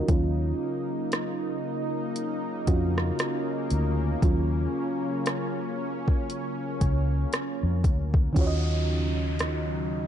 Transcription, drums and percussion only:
0, 0, Header, 1, 2, 480
1, 0, Start_track
1, 0, Key_signature, -6, "minor"
1, 0, Tempo, 1034483
1, 39, Time_signature, 4, 2, 24, 8
1, 4673, End_track
2, 0, Start_track
2, 0, Title_t, "Drums"
2, 39, Note_on_c, 9, 42, 66
2, 40, Note_on_c, 9, 36, 109
2, 85, Note_off_c, 9, 42, 0
2, 86, Note_off_c, 9, 36, 0
2, 519, Note_on_c, 9, 42, 59
2, 525, Note_on_c, 9, 37, 104
2, 565, Note_off_c, 9, 42, 0
2, 571, Note_off_c, 9, 37, 0
2, 1001, Note_on_c, 9, 42, 62
2, 1048, Note_off_c, 9, 42, 0
2, 1240, Note_on_c, 9, 42, 74
2, 1241, Note_on_c, 9, 36, 83
2, 1287, Note_off_c, 9, 36, 0
2, 1287, Note_off_c, 9, 42, 0
2, 1382, Note_on_c, 9, 37, 92
2, 1428, Note_off_c, 9, 37, 0
2, 1480, Note_on_c, 9, 42, 71
2, 1484, Note_on_c, 9, 37, 106
2, 1526, Note_off_c, 9, 42, 0
2, 1531, Note_off_c, 9, 37, 0
2, 1719, Note_on_c, 9, 42, 63
2, 1765, Note_off_c, 9, 42, 0
2, 1960, Note_on_c, 9, 36, 110
2, 1961, Note_on_c, 9, 42, 64
2, 2006, Note_off_c, 9, 36, 0
2, 2007, Note_off_c, 9, 42, 0
2, 2440, Note_on_c, 9, 42, 62
2, 2446, Note_on_c, 9, 37, 107
2, 2486, Note_off_c, 9, 42, 0
2, 2492, Note_off_c, 9, 37, 0
2, 2820, Note_on_c, 9, 36, 82
2, 2866, Note_off_c, 9, 36, 0
2, 2922, Note_on_c, 9, 42, 59
2, 2968, Note_off_c, 9, 42, 0
2, 3161, Note_on_c, 9, 36, 81
2, 3161, Note_on_c, 9, 42, 72
2, 3207, Note_off_c, 9, 36, 0
2, 3207, Note_off_c, 9, 42, 0
2, 3399, Note_on_c, 9, 42, 70
2, 3404, Note_on_c, 9, 37, 110
2, 3446, Note_off_c, 9, 42, 0
2, 3450, Note_off_c, 9, 37, 0
2, 3638, Note_on_c, 9, 36, 96
2, 3639, Note_on_c, 9, 42, 61
2, 3685, Note_off_c, 9, 36, 0
2, 3686, Note_off_c, 9, 42, 0
2, 3776, Note_on_c, 9, 36, 95
2, 3823, Note_off_c, 9, 36, 0
2, 3879, Note_on_c, 9, 36, 99
2, 3880, Note_on_c, 9, 42, 62
2, 3926, Note_off_c, 9, 36, 0
2, 3927, Note_off_c, 9, 42, 0
2, 4358, Note_on_c, 9, 42, 60
2, 4364, Note_on_c, 9, 37, 101
2, 4405, Note_off_c, 9, 42, 0
2, 4410, Note_off_c, 9, 37, 0
2, 4673, End_track
0, 0, End_of_file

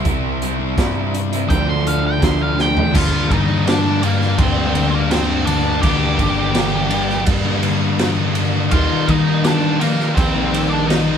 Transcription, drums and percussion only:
0, 0, Header, 1, 2, 480
1, 0, Start_track
1, 0, Key_signature, -2, "minor"
1, 0, Tempo, 722892
1, 33, Time_signature, 4, 2, 24, 8
1, 7421, End_track
2, 0, Start_track
2, 0, Title_t, "Drums"
2, 33, Note_on_c, 9, 42, 79
2, 35, Note_on_c, 9, 36, 123
2, 100, Note_off_c, 9, 42, 0
2, 101, Note_off_c, 9, 36, 0
2, 278, Note_on_c, 9, 42, 71
2, 345, Note_off_c, 9, 42, 0
2, 516, Note_on_c, 9, 36, 117
2, 516, Note_on_c, 9, 42, 80
2, 520, Note_on_c, 9, 38, 117
2, 582, Note_off_c, 9, 36, 0
2, 583, Note_off_c, 9, 42, 0
2, 586, Note_off_c, 9, 38, 0
2, 760, Note_on_c, 9, 42, 78
2, 826, Note_off_c, 9, 42, 0
2, 882, Note_on_c, 9, 42, 77
2, 948, Note_off_c, 9, 42, 0
2, 997, Note_on_c, 9, 36, 116
2, 997, Note_on_c, 9, 42, 73
2, 1063, Note_off_c, 9, 36, 0
2, 1064, Note_off_c, 9, 42, 0
2, 1240, Note_on_c, 9, 42, 78
2, 1306, Note_off_c, 9, 42, 0
2, 1476, Note_on_c, 9, 36, 111
2, 1476, Note_on_c, 9, 42, 78
2, 1479, Note_on_c, 9, 38, 108
2, 1542, Note_off_c, 9, 36, 0
2, 1542, Note_off_c, 9, 42, 0
2, 1545, Note_off_c, 9, 38, 0
2, 1719, Note_on_c, 9, 38, 68
2, 1786, Note_off_c, 9, 38, 0
2, 1838, Note_on_c, 9, 43, 93
2, 1905, Note_off_c, 9, 43, 0
2, 1957, Note_on_c, 9, 36, 121
2, 1958, Note_on_c, 9, 49, 127
2, 2023, Note_off_c, 9, 36, 0
2, 2024, Note_off_c, 9, 49, 0
2, 2196, Note_on_c, 9, 36, 84
2, 2199, Note_on_c, 9, 51, 69
2, 2262, Note_off_c, 9, 36, 0
2, 2266, Note_off_c, 9, 51, 0
2, 2439, Note_on_c, 9, 51, 115
2, 2443, Note_on_c, 9, 38, 116
2, 2506, Note_off_c, 9, 51, 0
2, 2509, Note_off_c, 9, 38, 0
2, 2675, Note_on_c, 9, 51, 84
2, 2741, Note_off_c, 9, 51, 0
2, 2798, Note_on_c, 9, 38, 33
2, 2864, Note_off_c, 9, 38, 0
2, 2910, Note_on_c, 9, 51, 115
2, 2913, Note_on_c, 9, 36, 114
2, 2977, Note_off_c, 9, 51, 0
2, 2979, Note_off_c, 9, 36, 0
2, 3155, Note_on_c, 9, 51, 86
2, 3221, Note_off_c, 9, 51, 0
2, 3393, Note_on_c, 9, 51, 116
2, 3396, Note_on_c, 9, 38, 112
2, 3459, Note_off_c, 9, 51, 0
2, 3462, Note_off_c, 9, 38, 0
2, 3633, Note_on_c, 9, 51, 92
2, 3700, Note_off_c, 9, 51, 0
2, 3871, Note_on_c, 9, 36, 127
2, 3871, Note_on_c, 9, 51, 120
2, 3937, Note_off_c, 9, 36, 0
2, 3937, Note_off_c, 9, 51, 0
2, 4109, Note_on_c, 9, 36, 83
2, 4109, Note_on_c, 9, 51, 79
2, 4176, Note_off_c, 9, 36, 0
2, 4176, Note_off_c, 9, 51, 0
2, 4346, Note_on_c, 9, 51, 115
2, 4350, Note_on_c, 9, 38, 122
2, 4413, Note_off_c, 9, 51, 0
2, 4416, Note_off_c, 9, 38, 0
2, 4584, Note_on_c, 9, 51, 89
2, 4651, Note_off_c, 9, 51, 0
2, 4712, Note_on_c, 9, 38, 32
2, 4778, Note_off_c, 9, 38, 0
2, 4823, Note_on_c, 9, 51, 122
2, 4828, Note_on_c, 9, 36, 117
2, 4889, Note_off_c, 9, 51, 0
2, 4895, Note_off_c, 9, 36, 0
2, 5065, Note_on_c, 9, 51, 83
2, 5131, Note_off_c, 9, 51, 0
2, 5306, Note_on_c, 9, 51, 108
2, 5309, Note_on_c, 9, 38, 116
2, 5372, Note_off_c, 9, 51, 0
2, 5376, Note_off_c, 9, 38, 0
2, 5545, Note_on_c, 9, 51, 84
2, 5611, Note_off_c, 9, 51, 0
2, 5785, Note_on_c, 9, 51, 116
2, 5791, Note_on_c, 9, 36, 125
2, 5851, Note_off_c, 9, 51, 0
2, 5857, Note_off_c, 9, 36, 0
2, 6032, Note_on_c, 9, 36, 80
2, 6032, Note_on_c, 9, 51, 74
2, 6098, Note_off_c, 9, 36, 0
2, 6098, Note_off_c, 9, 51, 0
2, 6270, Note_on_c, 9, 51, 112
2, 6274, Note_on_c, 9, 38, 125
2, 6337, Note_off_c, 9, 51, 0
2, 6340, Note_off_c, 9, 38, 0
2, 6515, Note_on_c, 9, 51, 84
2, 6581, Note_off_c, 9, 51, 0
2, 6639, Note_on_c, 9, 38, 35
2, 6706, Note_off_c, 9, 38, 0
2, 6755, Note_on_c, 9, 36, 114
2, 6755, Note_on_c, 9, 51, 107
2, 6821, Note_off_c, 9, 36, 0
2, 6822, Note_off_c, 9, 51, 0
2, 7000, Note_on_c, 9, 51, 94
2, 7067, Note_off_c, 9, 51, 0
2, 7238, Note_on_c, 9, 51, 110
2, 7242, Note_on_c, 9, 38, 115
2, 7305, Note_off_c, 9, 51, 0
2, 7308, Note_off_c, 9, 38, 0
2, 7421, End_track
0, 0, End_of_file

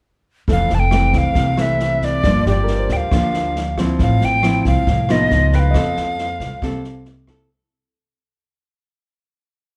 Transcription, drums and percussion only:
0, 0, Header, 1, 2, 480
1, 0, Start_track
1, 0, Key_signature, -1, "major"
1, 0, Tempo, 438276
1, 529, Time_signature, 4, 2, 24, 8
1, 10691, End_track
2, 0, Start_track
2, 0, Title_t, "Drums"
2, 524, Note_on_c, 9, 36, 48
2, 528, Note_on_c, 9, 38, 22
2, 633, Note_off_c, 9, 36, 0
2, 638, Note_off_c, 9, 38, 0
2, 762, Note_on_c, 9, 38, 21
2, 872, Note_off_c, 9, 38, 0
2, 999, Note_on_c, 9, 37, 60
2, 999, Note_on_c, 9, 38, 23
2, 1108, Note_off_c, 9, 37, 0
2, 1108, Note_off_c, 9, 38, 0
2, 1238, Note_on_c, 9, 38, 21
2, 1243, Note_on_c, 9, 36, 21
2, 1347, Note_off_c, 9, 38, 0
2, 1352, Note_off_c, 9, 36, 0
2, 1478, Note_on_c, 9, 38, 22
2, 1482, Note_on_c, 9, 36, 51
2, 1588, Note_off_c, 9, 38, 0
2, 1591, Note_off_c, 9, 36, 0
2, 1724, Note_on_c, 9, 37, 51
2, 1724, Note_on_c, 9, 38, 23
2, 1833, Note_off_c, 9, 37, 0
2, 1833, Note_off_c, 9, 38, 0
2, 1966, Note_on_c, 9, 38, 22
2, 2076, Note_off_c, 9, 38, 0
2, 2207, Note_on_c, 9, 36, 21
2, 2208, Note_on_c, 9, 38, 21
2, 2316, Note_off_c, 9, 36, 0
2, 2317, Note_off_c, 9, 38, 0
2, 2448, Note_on_c, 9, 37, 49
2, 2448, Note_on_c, 9, 38, 23
2, 2449, Note_on_c, 9, 36, 51
2, 2558, Note_off_c, 9, 36, 0
2, 2558, Note_off_c, 9, 37, 0
2, 2558, Note_off_c, 9, 38, 0
2, 2691, Note_on_c, 9, 38, 22
2, 2800, Note_off_c, 9, 38, 0
2, 2927, Note_on_c, 9, 38, 24
2, 3036, Note_off_c, 9, 38, 0
2, 3164, Note_on_c, 9, 38, 22
2, 3170, Note_on_c, 9, 36, 21
2, 3273, Note_off_c, 9, 38, 0
2, 3279, Note_off_c, 9, 36, 0
2, 3411, Note_on_c, 9, 37, 54
2, 3411, Note_on_c, 9, 38, 23
2, 3412, Note_on_c, 9, 36, 55
2, 3521, Note_off_c, 9, 36, 0
2, 3521, Note_off_c, 9, 37, 0
2, 3521, Note_off_c, 9, 38, 0
2, 3654, Note_on_c, 9, 38, 22
2, 3763, Note_off_c, 9, 38, 0
2, 3896, Note_on_c, 9, 38, 23
2, 4005, Note_off_c, 9, 38, 0
2, 4134, Note_on_c, 9, 36, 23
2, 4136, Note_on_c, 9, 37, 53
2, 4136, Note_on_c, 9, 38, 20
2, 4244, Note_off_c, 9, 36, 0
2, 4245, Note_off_c, 9, 37, 0
2, 4245, Note_off_c, 9, 38, 0
2, 4368, Note_on_c, 9, 38, 21
2, 4373, Note_on_c, 9, 36, 52
2, 4477, Note_off_c, 9, 38, 0
2, 4483, Note_off_c, 9, 36, 0
2, 4614, Note_on_c, 9, 38, 21
2, 4723, Note_off_c, 9, 38, 0
2, 4851, Note_on_c, 9, 37, 61
2, 4851, Note_on_c, 9, 38, 23
2, 4961, Note_off_c, 9, 37, 0
2, 4961, Note_off_c, 9, 38, 0
2, 5092, Note_on_c, 9, 38, 20
2, 5093, Note_on_c, 9, 36, 22
2, 5201, Note_off_c, 9, 38, 0
2, 5203, Note_off_c, 9, 36, 0
2, 5333, Note_on_c, 9, 38, 21
2, 5334, Note_on_c, 9, 36, 53
2, 5442, Note_off_c, 9, 38, 0
2, 5443, Note_off_c, 9, 36, 0
2, 5573, Note_on_c, 9, 37, 52
2, 5573, Note_on_c, 9, 38, 23
2, 5683, Note_off_c, 9, 37, 0
2, 5683, Note_off_c, 9, 38, 0
2, 5810, Note_on_c, 9, 38, 22
2, 5920, Note_off_c, 9, 38, 0
2, 6050, Note_on_c, 9, 38, 22
2, 6052, Note_on_c, 9, 36, 22
2, 6160, Note_off_c, 9, 38, 0
2, 6161, Note_off_c, 9, 36, 0
2, 6289, Note_on_c, 9, 37, 55
2, 6289, Note_on_c, 9, 38, 20
2, 6292, Note_on_c, 9, 36, 55
2, 6398, Note_off_c, 9, 37, 0
2, 6398, Note_off_c, 9, 38, 0
2, 6402, Note_off_c, 9, 36, 0
2, 6533, Note_on_c, 9, 38, 21
2, 6643, Note_off_c, 9, 38, 0
2, 6772, Note_on_c, 9, 38, 24
2, 6881, Note_off_c, 9, 38, 0
2, 7011, Note_on_c, 9, 36, 22
2, 7011, Note_on_c, 9, 38, 22
2, 7121, Note_off_c, 9, 36, 0
2, 7121, Note_off_c, 9, 38, 0
2, 7251, Note_on_c, 9, 36, 57
2, 7255, Note_on_c, 9, 37, 53
2, 7255, Note_on_c, 9, 38, 20
2, 7361, Note_off_c, 9, 36, 0
2, 7365, Note_off_c, 9, 37, 0
2, 7365, Note_off_c, 9, 38, 0
2, 7492, Note_on_c, 9, 38, 22
2, 7602, Note_off_c, 9, 38, 0
2, 7722, Note_on_c, 9, 38, 24
2, 7831, Note_off_c, 9, 38, 0
2, 7967, Note_on_c, 9, 37, 57
2, 7967, Note_on_c, 9, 38, 23
2, 7968, Note_on_c, 9, 36, 22
2, 8077, Note_off_c, 9, 36, 0
2, 8077, Note_off_c, 9, 37, 0
2, 8077, Note_off_c, 9, 38, 0
2, 10691, End_track
0, 0, End_of_file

